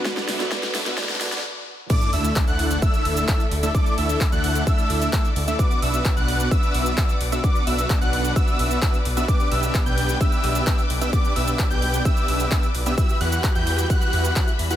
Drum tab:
CC |--------------------------------|x-------------------------------|--------------------------------|--------------------------------|
HH |x-x-o-x-x-x-o-x-x-x-o-x---------|x-x-o-x-x-x-o-x-x-x-o-x-x-x-o-x-|x-x-o-x-x-x-o-x-x-x-o-x-x-x-o-x-|x-x-o-x-x-x-o-x-x-x-o-x-x-x-o-x-|
SH |--------------------------------|x-x---x-x-x---x-x-x---x-x-x---x-|x-x---x-x-x---x-x-x---x-x-x---x-|x-x---x-x-x---x-x-x---x-x-x---x-|
CP |--------------------------------|--------x---------------x-------|--------x---------------x-------|--------x---------------x-------|
SD |o-o-o-o-o-o-o-o-oooooooo--------|--------------------------------|--------------------------------|--------------------------------|
BD |o-------o-------o---------------|o-------o-------o-------o-------|o-------o-------o-------o-------|o-------o-------o-------o-------|

CC |--------------------------------|--------------------------------|--------------------------------|--------------------------------|
HH |x-x-o-x-x-x-o-x-x-x-o-x-x-x-o-x-|x-x-o-x-x-x-o-x-x-x-o-x-x-x-o-x-|x-x-o-x-x-x-o-x-x-x-o-x-x-x-o-x-|x-x-o-x-x-x-o-x-x-x-o-x-x-x-o-x-|
SH |x-x---x-x-x---x-x-x---x-x-x---x-|x-x---x-x-x---x-x-x---x-x-x---x-|x-x---x-x-x---x-x-x---x-x-x---x-|x-x---x-x-x---x-x-x---x-x-x---x-|
CP |--------x---------------x-------|--------x---------------x-------|--------x---------------x-------|--------x---------------x-------|
SD |--------------------------------|--------------------------------|--------------------------------|--------------------------------|
BD |o-------o-------o-------o-------|o-------o-------o-------o-------|o-------o-------o-------o-------|o-------o-------o-------o-------|